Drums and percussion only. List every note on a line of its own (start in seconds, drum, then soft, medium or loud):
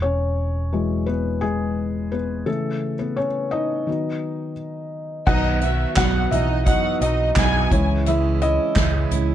5.27 kick loud
5.27 crash medium
5.61 closed hi-hat soft
5.96 kick medium
5.96 snare medium
5.96 clap medium
5.96 closed hi-hat medium
6.32 closed hi-hat medium
6.32 floor tom medium
6.66 kick medium
6.66 closed hi-hat medium
7.01 closed hi-hat medium
7.36 kick loud
7.36 snare loud
7.36 clap medium
7.36 closed hi-hat medium
7.71 kick medium
7.71 closed hi-hat medium
8.06 closed hi-hat medium
8.41 closed hi-hat medium
8.76 kick medium
8.76 snare loud
8.76 clap medium
8.76 closed hi-hat medium
9.11 closed hi-hat medium
9.11 floor tom medium